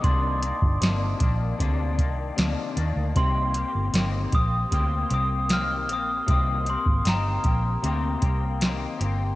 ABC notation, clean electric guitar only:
X:1
M:4/4
L:1/8
Q:1/4=77
K:Cm
V:1 name="Clean electric guitar"
[C,E,B,D] [E,B,D] [C,E,B,D] [E,B,D] [C,B,D] [E,B,D] [C,E,B,D] [E,B,D] | [C,E,B,CG] [B,CG] [E,B,CG] [B,CG] [C,B,CG] [B,CG] [E,B,CG] [B,CG] | [C,E,B,CG] [B,CG] [E,B,CG] [B,CG] [C,B,CG] [B,CG] [E,B,CG] [B,CG] |]